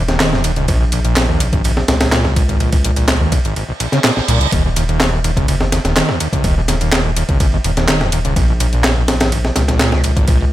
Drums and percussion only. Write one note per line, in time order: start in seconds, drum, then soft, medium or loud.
0.08 snare soft
0.08 closed hi-hat soft
0.20 snare loud
0.20 clap loud
0.20 closed hi-hat soft
0.20 ride medium
0.33 snare soft
0.44 closed hi-hat medium
0.44 ride medium
0.56 closed hi-hat soft
0.68 kick loud
0.68 closed hi-hat soft
0.68 ride medium
0.92 closed hi-hat medium
0.92 ride medium
1.05 closed hi-hat soft
1.16 snare loud
1.16 clap loud
1.16 closed hi-hat soft
1.16 ride medium
1.40 closed hi-hat medium
1.40 ride medium
1.53 kick loud
1.53 closed hi-hat soft
1.64 closed hi-hat soft
1.64 ride medium
1.77 snare soft
1.88 snare loud
1.88 closed hi-hat medium
1.88 ride medium
2.01 snare loud
2.01 closed hi-hat soft
2.01 ride medium
2.12 snare loud
2.12 clap loud
2.12 closed hi-hat soft
2.12 ride medium
2.25 snare soft
2.36 kick loud
2.36 closed hi-hat medium
2.36 ride medium
2.49 closed hi-hat soft
2.60 closed hi-hat soft
2.60 ride medium
2.72 kick loud
2.72 ride medium
2.85 closed hi-hat medium
2.96 closed hi-hat soft
2.96 ride medium
3.08 snare loud
3.08 clap loud
3.08 closed hi-hat soft
3.08 ride medium
3.32 kick loud
3.32 closed hi-hat medium
3.32 ride medium
3.45 closed hi-hat soft
3.56 closed hi-hat soft
3.56 ride medium
3.80 closed hi-hat medium
3.80 ride medium
3.92 snare soft
3.92 closed hi-hat soft
4.04 snare loud
4.04 clap loud
4.04 closed hi-hat soft
4.04 ride medium
4.17 snare soft
4.28 closed hi-hat medium
4.28 ride medium
4.41 closed hi-hat soft
4.52 kick loud
4.52 closed hi-hat soft
4.52 ride medium
4.76 closed hi-hat medium
4.76 ride medium
4.89 closed hi-hat soft
5.00 snare loud
5.00 clap loud
5.00 closed hi-hat soft
5.00 ride medium
5.24 closed hi-hat medium
5.24 ride medium
5.37 kick loud
5.37 closed hi-hat soft
5.48 closed hi-hat soft
5.48 ride medium
5.61 snare soft
5.72 snare medium
5.72 closed hi-hat medium
5.72 ride medium
5.85 snare soft
5.85 closed hi-hat soft
5.96 snare loud
5.96 clap loud
5.96 closed hi-hat soft
5.96 ride medium
6.09 snare soft
6.20 closed hi-hat medium
6.20 ride medium
6.33 kick medium
6.33 closed hi-hat soft
6.44 kick loud
6.44 closed hi-hat soft
6.44 ride medium
6.68 snare soft
6.68 closed hi-hat medium
6.68 ride medium
6.81 closed hi-hat soft
6.81 ride soft
6.92 snare loud
6.92 clap loud
6.92 closed hi-hat soft
6.92 ride loud
7.17 closed hi-hat medium
7.17 ride medium
7.29 kick medium
7.29 closed hi-hat soft
7.40 kick loud
7.40 closed hi-hat soft
7.40 ride medium
7.64 closed hi-hat medium
7.64 ride medium
7.77 snare soft
7.77 closed hi-hat soft
7.88 snare loud
7.88 clap loud
7.88 closed hi-hat soft
7.88 ride medium
8.01 snare soft
8.12 closed hi-hat medium
8.12 ride medium
8.25 closed hi-hat soft
8.36 kick loud
8.36 closed hi-hat soft
8.36 ride medium
8.60 closed hi-hat medium
8.60 ride medium
8.73 closed hi-hat soft
8.84 snare loud
8.84 clap loud
8.84 closed hi-hat soft
8.84 ride medium
9.08 snare loud
9.08 closed hi-hat medium
9.08 ride medium
9.20 snare loud
9.20 closed hi-hat soft
9.20 ride medium
9.32 closed hi-hat soft
9.32 ride medium
9.45 snare soft
9.56 snare medium
9.56 closed hi-hat medium
9.56 ride medium
9.68 snare soft
9.68 closed hi-hat soft
9.79 snare loud
9.79 clap loud
9.79 closed hi-hat soft
9.79 ride medium
9.92 snare soft
10.04 closed hi-hat medium
10.04 ride medium
10.16 kick loud
10.16 closed hi-hat soft
10.28 kick loud
10.28 closed hi-hat soft
10.28 ride medium